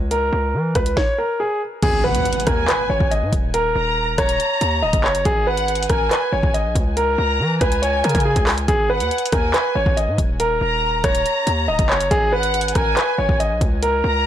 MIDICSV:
0, 0, Header, 1, 6, 480
1, 0, Start_track
1, 0, Key_signature, 5, "minor"
1, 0, Tempo, 428571
1, 125, Time_signature, 4, 2, 24, 8
1, 15977, End_track
2, 0, Start_track
2, 0, Title_t, "Violin section"
2, 0, Program_c, 0, 48
2, 2287, Note_on_c, 0, 78, 78
2, 2737, Note_off_c, 0, 78, 0
2, 2767, Note_on_c, 0, 80, 78
2, 3443, Note_off_c, 0, 80, 0
2, 4203, Note_on_c, 0, 82, 78
2, 4655, Note_off_c, 0, 82, 0
2, 4684, Note_on_c, 0, 82, 86
2, 5840, Note_off_c, 0, 82, 0
2, 6126, Note_on_c, 0, 78, 86
2, 6577, Note_off_c, 0, 78, 0
2, 6607, Note_on_c, 0, 80, 81
2, 7283, Note_off_c, 0, 80, 0
2, 8042, Note_on_c, 0, 82, 84
2, 8495, Note_off_c, 0, 82, 0
2, 8526, Note_on_c, 0, 80, 81
2, 9681, Note_off_c, 0, 80, 0
2, 9966, Note_on_c, 0, 78, 80
2, 10417, Note_off_c, 0, 78, 0
2, 10447, Note_on_c, 0, 80, 79
2, 11123, Note_off_c, 0, 80, 0
2, 11883, Note_on_c, 0, 82, 80
2, 12335, Note_off_c, 0, 82, 0
2, 12363, Note_on_c, 0, 82, 83
2, 13519, Note_off_c, 0, 82, 0
2, 13805, Note_on_c, 0, 78, 89
2, 14256, Note_off_c, 0, 78, 0
2, 14288, Note_on_c, 0, 80, 85
2, 14963, Note_off_c, 0, 80, 0
2, 15722, Note_on_c, 0, 82, 80
2, 15977, Note_off_c, 0, 82, 0
2, 15977, End_track
3, 0, Start_track
3, 0, Title_t, "Grand piano"
3, 0, Program_c, 1, 0
3, 124, Note_on_c, 1, 70, 97
3, 801, Note_off_c, 1, 70, 0
3, 847, Note_on_c, 1, 71, 78
3, 1069, Note_off_c, 1, 71, 0
3, 1082, Note_on_c, 1, 73, 91
3, 1307, Note_off_c, 1, 73, 0
3, 1327, Note_on_c, 1, 70, 83
3, 1549, Note_off_c, 1, 70, 0
3, 1566, Note_on_c, 1, 68, 77
3, 1789, Note_off_c, 1, 68, 0
3, 2045, Note_on_c, 1, 68, 101
3, 2268, Note_off_c, 1, 68, 0
3, 2285, Note_on_c, 1, 71, 88
3, 2736, Note_off_c, 1, 71, 0
3, 2764, Note_on_c, 1, 70, 81
3, 2988, Note_off_c, 1, 70, 0
3, 3007, Note_on_c, 1, 71, 89
3, 3229, Note_off_c, 1, 71, 0
3, 3245, Note_on_c, 1, 73, 90
3, 3468, Note_off_c, 1, 73, 0
3, 3486, Note_on_c, 1, 75, 81
3, 3709, Note_off_c, 1, 75, 0
3, 3965, Note_on_c, 1, 70, 103
3, 4642, Note_off_c, 1, 70, 0
3, 4684, Note_on_c, 1, 73, 84
3, 5361, Note_off_c, 1, 73, 0
3, 5404, Note_on_c, 1, 75, 84
3, 5628, Note_off_c, 1, 75, 0
3, 5645, Note_on_c, 1, 73, 88
3, 5868, Note_off_c, 1, 73, 0
3, 5884, Note_on_c, 1, 68, 113
3, 6107, Note_off_c, 1, 68, 0
3, 6126, Note_on_c, 1, 71, 86
3, 6577, Note_off_c, 1, 71, 0
3, 6604, Note_on_c, 1, 70, 87
3, 6828, Note_off_c, 1, 70, 0
3, 6844, Note_on_c, 1, 71, 84
3, 7068, Note_off_c, 1, 71, 0
3, 7086, Note_on_c, 1, 73, 82
3, 7309, Note_off_c, 1, 73, 0
3, 7326, Note_on_c, 1, 75, 78
3, 7549, Note_off_c, 1, 75, 0
3, 7804, Note_on_c, 1, 70, 102
3, 8481, Note_off_c, 1, 70, 0
3, 8526, Note_on_c, 1, 71, 78
3, 8749, Note_off_c, 1, 71, 0
3, 8761, Note_on_c, 1, 73, 90
3, 8986, Note_off_c, 1, 73, 0
3, 9005, Note_on_c, 1, 70, 85
3, 9228, Note_off_c, 1, 70, 0
3, 9245, Note_on_c, 1, 68, 80
3, 9468, Note_off_c, 1, 68, 0
3, 9724, Note_on_c, 1, 68, 98
3, 9948, Note_off_c, 1, 68, 0
3, 9964, Note_on_c, 1, 71, 89
3, 10416, Note_off_c, 1, 71, 0
3, 10445, Note_on_c, 1, 70, 83
3, 10668, Note_off_c, 1, 70, 0
3, 10686, Note_on_c, 1, 71, 88
3, 10909, Note_off_c, 1, 71, 0
3, 10925, Note_on_c, 1, 73, 89
3, 11148, Note_off_c, 1, 73, 0
3, 11165, Note_on_c, 1, 75, 79
3, 11388, Note_off_c, 1, 75, 0
3, 11646, Note_on_c, 1, 70, 101
3, 12322, Note_off_c, 1, 70, 0
3, 12364, Note_on_c, 1, 73, 83
3, 13042, Note_off_c, 1, 73, 0
3, 13083, Note_on_c, 1, 75, 87
3, 13307, Note_off_c, 1, 75, 0
3, 13324, Note_on_c, 1, 73, 87
3, 13548, Note_off_c, 1, 73, 0
3, 13562, Note_on_c, 1, 68, 112
3, 13787, Note_off_c, 1, 68, 0
3, 13805, Note_on_c, 1, 71, 90
3, 14256, Note_off_c, 1, 71, 0
3, 14283, Note_on_c, 1, 70, 86
3, 14507, Note_off_c, 1, 70, 0
3, 14523, Note_on_c, 1, 71, 81
3, 14747, Note_off_c, 1, 71, 0
3, 14765, Note_on_c, 1, 73, 83
3, 14988, Note_off_c, 1, 73, 0
3, 15006, Note_on_c, 1, 75, 79
3, 15229, Note_off_c, 1, 75, 0
3, 15485, Note_on_c, 1, 70, 99
3, 15977, Note_off_c, 1, 70, 0
3, 15977, End_track
4, 0, Start_track
4, 0, Title_t, "808-style bass"
4, 0, Program_c, 2, 38
4, 0, Note_on_c, 2, 37, 109
4, 345, Note_off_c, 2, 37, 0
4, 365, Note_on_c, 2, 37, 109
4, 605, Note_on_c, 2, 52, 97
4, 622, Note_off_c, 2, 37, 0
4, 833, Note_off_c, 2, 52, 0
4, 844, Note_on_c, 2, 37, 106
4, 1075, Note_off_c, 2, 37, 0
4, 2045, Note_on_c, 2, 32, 113
4, 2405, Note_on_c, 2, 39, 101
4, 2421, Note_off_c, 2, 32, 0
4, 2519, Note_off_c, 2, 39, 0
4, 2765, Note_on_c, 2, 39, 105
4, 2995, Note_off_c, 2, 39, 0
4, 3245, Note_on_c, 2, 32, 105
4, 3358, Note_off_c, 2, 32, 0
4, 3364, Note_on_c, 2, 32, 105
4, 3605, Note_on_c, 2, 44, 102
4, 3622, Note_off_c, 2, 32, 0
4, 3719, Note_off_c, 2, 44, 0
4, 3724, Note_on_c, 2, 27, 107
4, 4185, Note_off_c, 2, 27, 0
4, 4205, Note_on_c, 2, 27, 108
4, 4666, Note_off_c, 2, 27, 0
4, 4685, Note_on_c, 2, 27, 106
4, 4915, Note_off_c, 2, 27, 0
4, 5166, Note_on_c, 2, 39, 106
4, 5406, Note_on_c, 2, 25, 101
4, 5423, Note_off_c, 2, 39, 0
4, 5519, Note_off_c, 2, 25, 0
4, 5525, Note_on_c, 2, 30, 102
4, 5871, Note_off_c, 2, 30, 0
4, 5885, Note_on_c, 2, 32, 120
4, 6576, Note_off_c, 2, 32, 0
4, 6604, Note_on_c, 2, 32, 107
4, 6835, Note_off_c, 2, 32, 0
4, 7084, Note_on_c, 2, 32, 107
4, 7200, Note_off_c, 2, 32, 0
4, 7204, Note_on_c, 2, 32, 105
4, 7444, Note_on_c, 2, 34, 101
4, 7461, Note_off_c, 2, 32, 0
4, 7559, Note_off_c, 2, 34, 0
4, 7565, Note_on_c, 2, 37, 112
4, 8026, Note_off_c, 2, 37, 0
4, 8045, Note_on_c, 2, 37, 108
4, 8285, Note_on_c, 2, 52, 100
4, 8302, Note_off_c, 2, 37, 0
4, 8513, Note_off_c, 2, 52, 0
4, 8525, Note_on_c, 2, 37, 107
4, 8986, Note_off_c, 2, 37, 0
4, 9005, Note_on_c, 2, 49, 107
4, 9118, Note_off_c, 2, 49, 0
4, 9125, Note_on_c, 2, 49, 103
4, 9355, Note_off_c, 2, 49, 0
4, 9366, Note_on_c, 2, 37, 100
4, 9711, Note_off_c, 2, 37, 0
4, 9726, Note_on_c, 2, 32, 112
4, 10086, Note_on_c, 2, 39, 100
4, 10103, Note_off_c, 2, 32, 0
4, 10200, Note_off_c, 2, 39, 0
4, 10445, Note_on_c, 2, 39, 105
4, 10675, Note_off_c, 2, 39, 0
4, 10925, Note_on_c, 2, 32, 106
4, 11040, Note_off_c, 2, 32, 0
4, 11045, Note_on_c, 2, 32, 106
4, 11285, Note_on_c, 2, 44, 101
4, 11302, Note_off_c, 2, 32, 0
4, 11399, Note_off_c, 2, 44, 0
4, 11405, Note_on_c, 2, 27, 108
4, 11866, Note_off_c, 2, 27, 0
4, 11885, Note_on_c, 2, 27, 108
4, 12346, Note_off_c, 2, 27, 0
4, 12365, Note_on_c, 2, 27, 104
4, 12595, Note_off_c, 2, 27, 0
4, 12846, Note_on_c, 2, 39, 108
4, 13085, Note_on_c, 2, 25, 102
4, 13102, Note_off_c, 2, 39, 0
4, 13199, Note_off_c, 2, 25, 0
4, 13205, Note_on_c, 2, 30, 102
4, 13551, Note_off_c, 2, 30, 0
4, 13565, Note_on_c, 2, 32, 120
4, 14256, Note_off_c, 2, 32, 0
4, 14285, Note_on_c, 2, 32, 107
4, 14515, Note_off_c, 2, 32, 0
4, 14766, Note_on_c, 2, 32, 108
4, 14878, Note_off_c, 2, 32, 0
4, 14884, Note_on_c, 2, 32, 104
4, 15125, Note_on_c, 2, 34, 101
4, 15142, Note_off_c, 2, 32, 0
4, 15239, Note_off_c, 2, 34, 0
4, 15244, Note_on_c, 2, 37, 109
4, 15705, Note_off_c, 2, 37, 0
4, 15725, Note_on_c, 2, 37, 112
4, 15977, Note_off_c, 2, 37, 0
4, 15977, End_track
5, 0, Start_track
5, 0, Title_t, "Impact"
5, 0, Program_c, 3, 103
5, 2045, Note_on_c, 3, 60, 88
5, 3965, Note_off_c, 3, 60, 0
5, 15977, End_track
6, 0, Start_track
6, 0, Title_t, "Drums"
6, 124, Note_on_c, 9, 42, 79
6, 236, Note_off_c, 9, 42, 0
6, 842, Note_on_c, 9, 42, 80
6, 844, Note_on_c, 9, 36, 97
6, 844, Note_on_c, 9, 37, 94
6, 954, Note_off_c, 9, 42, 0
6, 956, Note_off_c, 9, 36, 0
6, 956, Note_off_c, 9, 37, 0
6, 963, Note_on_c, 9, 42, 89
6, 1075, Note_off_c, 9, 42, 0
6, 1085, Note_on_c, 9, 36, 116
6, 1085, Note_on_c, 9, 38, 93
6, 1197, Note_off_c, 9, 36, 0
6, 1197, Note_off_c, 9, 38, 0
6, 2044, Note_on_c, 9, 42, 80
6, 2045, Note_on_c, 9, 36, 110
6, 2045, Note_on_c, 9, 49, 102
6, 2156, Note_off_c, 9, 42, 0
6, 2157, Note_off_c, 9, 36, 0
6, 2157, Note_off_c, 9, 49, 0
6, 2404, Note_on_c, 9, 42, 78
6, 2516, Note_off_c, 9, 42, 0
6, 2525, Note_on_c, 9, 42, 69
6, 2605, Note_off_c, 9, 42, 0
6, 2605, Note_on_c, 9, 42, 71
6, 2685, Note_off_c, 9, 42, 0
6, 2685, Note_on_c, 9, 42, 72
6, 2763, Note_off_c, 9, 42, 0
6, 2763, Note_on_c, 9, 42, 80
6, 2765, Note_on_c, 9, 36, 98
6, 2765, Note_on_c, 9, 37, 98
6, 2875, Note_off_c, 9, 42, 0
6, 2877, Note_off_c, 9, 36, 0
6, 2877, Note_off_c, 9, 37, 0
6, 3004, Note_on_c, 9, 39, 127
6, 3006, Note_on_c, 9, 42, 77
6, 3116, Note_off_c, 9, 39, 0
6, 3118, Note_off_c, 9, 42, 0
6, 3364, Note_on_c, 9, 36, 100
6, 3476, Note_off_c, 9, 36, 0
6, 3489, Note_on_c, 9, 42, 67
6, 3601, Note_off_c, 9, 42, 0
6, 3724, Note_on_c, 9, 36, 97
6, 3726, Note_on_c, 9, 42, 88
6, 3836, Note_off_c, 9, 36, 0
6, 3838, Note_off_c, 9, 42, 0
6, 3964, Note_on_c, 9, 42, 83
6, 4076, Note_off_c, 9, 42, 0
6, 4683, Note_on_c, 9, 42, 76
6, 4685, Note_on_c, 9, 36, 99
6, 4685, Note_on_c, 9, 37, 99
6, 4795, Note_off_c, 9, 42, 0
6, 4797, Note_off_c, 9, 36, 0
6, 4797, Note_off_c, 9, 37, 0
6, 4803, Note_on_c, 9, 42, 91
6, 4915, Note_off_c, 9, 42, 0
6, 4926, Note_on_c, 9, 42, 72
6, 5038, Note_off_c, 9, 42, 0
6, 5165, Note_on_c, 9, 42, 84
6, 5277, Note_off_c, 9, 42, 0
6, 5523, Note_on_c, 9, 42, 78
6, 5525, Note_on_c, 9, 36, 94
6, 5635, Note_off_c, 9, 42, 0
6, 5637, Note_off_c, 9, 36, 0
6, 5645, Note_on_c, 9, 39, 117
6, 5757, Note_off_c, 9, 39, 0
6, 5765, Note_on_c, 9, 42, 83
6, 5877, Note_off_c, 9, 42, 0
6, 5884, Note_on_c, 9, 42, 81
6, 5885, Note_on_c, 9, 36, 112
6, 5996, Note_off_c, 9, 42, 0
6, 5997, Note_off_c, 9, 36, 0
6, 6243, Note_on_c, 9, 42, 78
6, 6355, Note_off_c, 9, 42, 0
6, 6365, Note_on_c, 9, 42, 71
6, 6445, Note_off_c, 9, 42, 0
6, 6445, Note_on_c, 9, 42, 70
6, 6525, Note_off_c, 9, 42, 0
6, 6525, Note_on_c, 9, 42, 67
6, 6603, Note_off_c, 9, 42, 0
6, 6603, Note_on_c, 9, 42, 77
6, 6605, Note_on_c, 9, 36, 99
6, 6605, Note_on_c, 9, 37, 101
6, 6715, Note_off_c, 9, 42, 0
6, 6717, Note_off_c, 9, 36, 0
6, 6717, Note_off_c, 9, 37, 0
6, 6845, Note_on_c, 9, 39, 126
6, 6847, Note_on_c, 9, 42, 76
6, 6957, Note_off_c, 9, 39, 0
6, 6959, Note_off_c, 9, 42, 0
6, 7205, Note_on_c, 9, 36, 102
6, 7317, Note_off_c, 9, 36, 0
6, 7330, Note_on_c, 9, 42, 69
6, 7442, Note_off_c, 9, 42, 0
6, 7565, Note_on_c, 9, 36, 98
6, 7566, Note_on_c, 9, 42, 93
6, 7677, Note_off_c, 9, 36, 0
6, 7678, Note_off_c, 9, 42, 0
6, 7805, Note_on_c, 9, 42, 80
6, 7917, Note_off_c, 9, 42, 0
6, 8523, Note_on_c, 9, 42, 80
6, 8525, Note_on_c, 9, 36, 97
6, 8525, Note_on_c, 9, 37, 99
6, 8635, Note_off_c, 9, 42, 0
6, 8637, Note_off_c, 9, 36, 0
6, 8637, Note_off_c, 9, 37, 0
6, 8644, Note_on_c, 9, 42, 95
6, 8756, Note_off_c, 9, 42, 0
6, 8767, Note_on_c, 9, 42, 73
6, 8879, Note_off_c, 9, 42, 0
6, 9006, Note_on_c, 9, 42, 69
6, 9066, Note_off_c, 9, 42, 0
6, 9066, Note_on_c, 9, 42, 68
6, 9125, Note_on_c, 9, 36, 99
6, 9126, Note_off_c, 9, 42, 0
6, 9126, Note_on_c, 9, 42, 68
6, 9186, Note_off_c, 9, 42, 0
6, 9186, Note_on_c, 9, 42, 69
6, 9237, Note_off_c, 9, 36, 0
6, 9298, Note_off_c, 9, 42, 0
6, 9363, Note_on_c, 9, 42, 72
6, 9366, Note_on_c, 9, 36, 94
6, 9475, Note_off_c, 9, 42, 0
6, 9478, Note_off_c, 9, 36, 0
6, 9486, Note_on_c, 9, 37, 101
6, 9486, Note_on_c, 9, 39, 118
6, 9486, Note_on_c, 9, 46, 63
6, 9598, Note_off_c, 9, 37, 0
6, 9598, Note_off_c, 9, 39, 0
6, 9598, Note_off_c, 9, 46, 0
6, 9606, Note_on_c, 9, 42, 79
6, 9718, Note_off_c, 9, 42, 0
6, 9725, Note_on_c, 9, 42, 80
6, 9726, Note_on_c, 9, 36, 108
6, 9837, Note_off_c, 9, 42, 0
6, 9838, Note_off_c, 9, 36, 0
6, 10084, Note_on_c, 9, 42, 75
6, 10196, Note_off_c, 9, 42, 0
6, 10206, Note_on_c, 9, 42, 68
6, 10286, Note_off_c, 9, 42, 0
6, 10286, Note_on_c, 9, 42, 71
6, 10366, Note_off_c, 9, 42, 0
6, 10366, Note_on_c, 9, 42, 72
6, 10443, Note_off_c, 9, 42, 0
6, 10443, Note_on_c, 9, 42, 81
6, 10445, Note_on_c, 9, 36, 96
6, 10445, Note_on_c, 9, 37, 100
6, 10555, Note_off_c, 9, 42, 0
6, 10557, Note_off_c, 9, 36, 0
6, 10557, Note_off_c, 9, 37, 0
6, 10685, Note_on_c, 9, 39, 125
6, 10687, Note_on_c, 9, 42, 75
6, 10797, Note_off_c, 9, 39, 0
6, 10799, Note_off_c, 9, 42, 0
6, 11045, Note_on_c, 9, 36, 102
6, 11157, Note_off_c, 9, 36, 0
6, 11171, Note_on_c, 9, 42, 70
6, 11283, Note_off_c, 9, 42, 0
6, 11405, Note_on_c, 9, 36, 98
6, 11406, Note_on_c, 9, 42, 90
6, 11517, Note_off_c, 9, 36, 0
6, 11518, Note_off_c, 9, 42, 0
6, 11645, Note_on_c, 9, 42, 83
6, 11757, Note_off_c, 9, 42, 0
6, 12363, Note_on_c, 9, 42, 80
6, 12365, Note_on_c, 9, 36, 97
6, 12365, Note_on_c, 9, 37, 99
6, 12475, Note_off_c, 9, 42, 0
6, 12477, Note_off_c, 9, 36, 0
6, 12477, Note_off_c, 9, 37, 0
6, 12484, Note_on_c, 9, 42, 93
6, 12596, Note_off_c, 9, 42, 0
6, 12607, Note_on_c, 9, 42, 73
6, 12719, Note_off_c, 9, 42, 0
6, 12846, Note_on_c, 9, 42, 87
6, 12958, Note_off_c, 9, 42, 0
6, 13203, Note_on_c, 9, 42, 77
6, 13205, Note_on_c, 9, 36, 93
6, 13315, Note_off_c, 9, 42, 0
6, 13317, Note_off_c, 9, 36, 0
6, 13325, Note_on_c, 9, 39, 124
6, 13437, Note_off_c, 9, 39, 0
6, 13446, Note_on_c, 9, 42, 82
6, 13558, Note_off_c, 9, 42, 0
6, 13564, Note_on_c, 9, 42, 84
6, 13565, Note_on_c, 9, 36, 108
6, 13676, Note_off_c, 9, 42, 0
6, 13677, Note_off_c, 9, 36, 0
6, 13923, Note_on_c, 9, 42, 75
6, 14035, Note_off_c, 9, 42, 0
6, 14045, Note_on_c, 9, 42, 70
6, 14125, Note_off_c, 9, 42, 0
6, 14125, Note_on_c, 9, 42, 73
6, 14206, Note_off_c, 9, 42, 0
6, 14206, Note_on_c, 9, 42, 72
6, 14283, Note_off_c, 9, 42, 0
6, 14283, Note_on_c, 9, 42, 81
6, 14285, Note_on_c, 9, 36, 98
6, 14285, Note_on_c, 9, 37, 101
6, 14395, Note_off_c, 9, 42, 0
6, 14397, Note_off_c, 9, 36, 0
6, 14397, Note_off_c, 9, 37, 0
6, 14525, Note_on_c, 9, 39, 126
6, 14527, Note_on_c, 9, 42, 74
6, 14637, Note_off_c, 9, 39, 0
6, 14639, Note_off_c, 9, 42, 0
6, 14884, Note_on_c, 9, 36, 100
6, 14996, Note_off_c, 9, 36, 0
6, 15010, Note_on_c, 9, 42, 69
6, 15122, Note_off_c, 9, 42, 0
6, 15244, Note_on_c, 9, 36, 100
6, 15246, Note_on_c, 9, 42, 89
6, 15356, Note_off_c, 9, 36, 0
6, 15358, Note_off_c, 9, 42, 0
6, 15485, Note_on_c, 9, 42, 81
6, 15597, Note_off_c, 9, 42, 0
6, 15977, End_track
0, 0, End_of_file